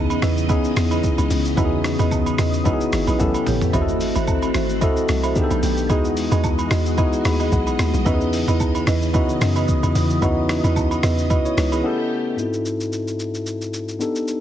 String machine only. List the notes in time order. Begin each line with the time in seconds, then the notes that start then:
Already playing: C#3 E3 B3 D#5
3.19 C#3 A3 G4
3.73 E3 C4 F#4
5.36 D#3 A3 B3 G4
5.90 E3 G#3 F#4 D#5
8.06 C#3 B3
11.84 A3 G4